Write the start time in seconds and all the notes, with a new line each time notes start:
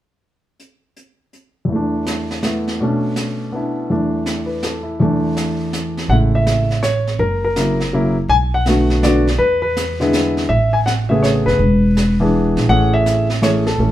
0.60 closed hi-hat
0.97 closed hi-hat
1.33 closed hi-hat
1.65 E2 E3
1.70 A3, brush sweep
1.76 D4
2.06 snare, hi-hat pedal
2.31 snare
2.43 A3 B3 E4, snare, hi-hat pedal
2.67 snare
2.80 B2 A3 C#4 D4, brush sweep
3.16 snare, hi-hat pedal
3.52 B3 D4 E4
3.89 E2 E3 A3 D4, brush sweep
4.26 snare, hi-hat pedal
4.46 B4
4.63 A4, snare, hi-hat pedal
4.83 E4
4.99 E2 E3 A3 D4, brush sweep
5.37 snare, hi-hat pedal
5.73 snare, hi-hat pedal
5.97 snare
6.09 A1 C#3 G#3 A3 E4 F#5, brush sweep
6.35 E5
6.47 snare, hi-hat pedal
6.70 snare
6.83 C#5, snare, hi-hat pedal
7.07 snare
7.19 F#1 A#4, brush sweep
7.44 A#4
7.56 C#3 F#3 A#3 E4, snare, hi-hat pedal
7.80 snare
7.93 C#3 F#3 A#3 E4
8.28 B1 G#5, brush sweep
8.54 F#5
8.66 D3 A3 B3 F#4, snare, hi-hat pedal
8.90 snare
9.03 D3 A3 B3 F#4 D5, snare, hi-hat pedal
9.27 snare
9.38 E2 B4, brush sweep
9.62 B4
9.77 snare, hi-hat pedal
10.00 D3 G#3 B3 E4, snare
10.13 snare, hi-hat pedal
10.37 snare
10.49 A1 E5, brush sweep
10.73 G#5
10.86 F#5, snare, hi-hat pedal
11.09 C#3 A3 B3 G#4 E5
11.23 C#5, snare, hi-hat pedal
11.46 F#1 B4, snare
11.59 E1, brush sweep
11.97 snare, hi-hat pedal
12.20 E3 B3 D4 G#4
12.56 A#1, snare
12.69 A1 E3 A3 C#4 G#4 F#5, brush sweep
12.94 E5
13.06 snare, hi-hat pedal
13.30 snare
13.42 E3 A3 C#4 G#4 C#5, snare, hi-hat pedal
13.66 A4, snare
13.78 A1 E3 A3 C#4 A4